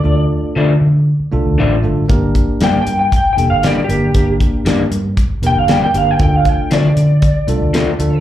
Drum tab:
HH |--------|xxxxxxxx|xxxxxxxx|xxxxxxxx|
SD |--------|--o---o-|--o---o-|--o---o-|
BD |--------|oo--o---|oo--o---|oo--o---|